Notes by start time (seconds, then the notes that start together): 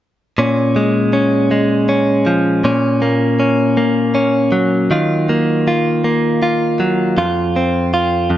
0.38 A#2 C#4
0.76 G#3
1.13 C#4
1.51 G#3
1.89 C#4
2.26 F3
2.64 A#2 C#4
3.02 A#3
3.40 C#4
3.77 A#3
4.15 C#4
4.52 F#3
4.91 D#3 F4
5.29 A#3
5.68 F4
6.04 A#3
6.43 F4
6.80 F#3
7.18 F2 F4
7.56 C4
7.94 F4
8.30 F2